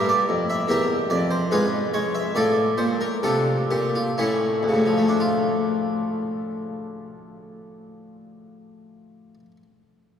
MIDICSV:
0, 0, Header, 1, 2, 480
1, 0, Start_track
1, 0, Key_signature, -1, "minor"
1, 0, Tempo, 805369
1, 920, Tempo, 860832
1, 1388, Time_signature, 3, 2, 24, 8
1, 1880, Tempo, 943396
1, 2360, Tempo, 990099
1, 5263, End_track
2, 0, Start_track
2, 0, Title_t, "Harpsichord"
2, 0, Program_c, 0, 6
2, 0, Note_on_c, 0, 43, 60
2, 0, Note_on_c, 0, 67, 73
2, 0, Note_on_c, 0, 70, 79
2, 0, Note_on_c, 0, 76, 91
2, 53, Note_on_c, 0, 74, 85
2, 61, Note_off_c, 0, 67, 0
2, 62, Note_off_c, 0, 70, 0
2, 64, Note_off_c, 0, 76, 0
2, 133, Note_off_c, 0, 43, 0
2, 173, Note_on_c, 0, 41, 60
2, 264, Note_off_c, 0, 74, 0
2, 296, Note_on_c, 0, 76, 84
2, 372, Note_off_c, 0, 41, 0
2, 402, Note_off_c, 0, 76, 0
2, 405, Note_on_c, 0, 40, 61
2, 409, Note_on_c, 0, 76, 91
2, 419, Note_on_c, 0, 67, 70
2, 420, Note_on_c, 0, 70, 70
2, 609, Note_off_c, 0, 40, 0
2, 650, Note_off_c, 0, 67, 0
2, 650, Note_off_c, 0, 70, 0
2, 656, Note_on_c, 0, 41, 54
2, 657, Note_on_c, 0, 74, 87
2, 662, Note_off_c, 0, 76, 0
2, 778, Note_on_c, 0, 72, 77
2, 788, Note_off_c, 0, 74, 0
2, 860, Note_off_c, 0, 41, 0
2, 901, Note_on_c, 0, 44, 60
2, 905, Note_on_c, 0, 71, 87
2, 909, Note_on_c, 0, 68, 71
2, 910, Note_on_c, 0, 65, 69
2, 911, Note_off_c, 0, 72, 0
2, 1095, Note_off_c, 0, 44, 0
2, 1109, Note_off_c, 0, 71, 0
2, 1130, Note_off_c, 0, 68, 0
2, 1131, Note_off_c, 0, 65, 0
2, 1139, Note_on_c, 0, 73, 89
2, 1140, Note_on_c, 0, 56, 59
2, 1256, Note_on_c, 0, 76, 74
2, 1263, Note_off_c, 0, 73, 0
2, 1334, Note_off_c, 0, 56, 0
2, 1370, Note_on_c, 0, 45, 57
2, 1373, Note_on_c, 0, 74, 82
2, 1377, Note_on_c, 0, 69, 65
2, 1378, Note_on_c, 0, 65, 67
2, 1381, Note_off_c, 0, 76, 0
2, 1570, Note_off_c, 0, 45, 0
2, 1606, Note_on_c, 0, 46, 54
2, 1607, Note_off_c, 0, 65, 0
2, 1607, Note_off_c, 0, 69, 0
2, 1608, Note_on_c, 0, 72, 86
2, 1622, Note_off_c, 0, 74, 0
2, 1736, Note_on_c, 0, 70, 82
2, 1743, Note_off_c, 0, 72, 0
2, 1816, Note_off_c, 0, 46, 0
2, 1862, Note_on_c, 0, 48, 55
2, 1862, Note_on_c, 0, 69, 84
2, 1865, Note_on_c, 0, 62, 62
2, 1869, Note_on_c, 0, 65, 64
2, 1871, Note_off_c, 0, 70, 0
2, 2059, Note_off_c, 0, 48, 0
2, 2092, Note_off_c, 0, 62, 0
2, 2094, Note_off_c, 0, 65, 0
2, 2104, Note_on_c, 0, 46, 49
2, 2104, Note_on_c, 0, 67, 80
2, 2108, Note_off_c, 0, 69, 0
2, 2230, Note_on_c, 0, 65, 70
2, 2231, Note_off_c, 0, 67, 0
2, 2304, Note_off_c, 0, 46, 0
2, 2344, Note_on_c, 0, 64, 72
2, 2348, Note_on_c, 0, 45, 56
2, 2349, Note_on_c, 0, 57, 52
2, 2350, Note_on_c, 0, 61, 52
2, 2357, Note_off_c, 0, 65, 0
2, 2547, Note_off_c, 0, 45, 0
2, 2564, Note_on_c, 0, 38, 47
2, 2591, Note_on_c, 0, 49, 48
2, 2618, Note_on_c, 0, 45, 39
2, 2674, Note_on_c, 0, 53, 40
2, 2724, Note_off_c, 0, 57, 0
2, 2730, Note_on_c, 0, 57, 38
2, 2763, Note_off_c, 0, 64, 0
2, 2783, Note_on_c, 0, 62, 43
2, 2789, Note_off_c, 0, 49, 0
2, 2821, Note_off_c, 0, 61, 0
2, 2841, Note_on_c, 0, 65, 53
2, 4848, Note_off_c, 0, 38, 0
2, 4875, Note_off_c, 0, 45, 0
2, 4903, Note_off_c, 0, 53, 0
2, 4931, Note_off_c, 0, 57, 0
2, 4958, Note_off_c, 0, 62, 0
2, 4987, Note_off_c, 0, 65, 0
2, 5263, End_track
0, 0, End_of_file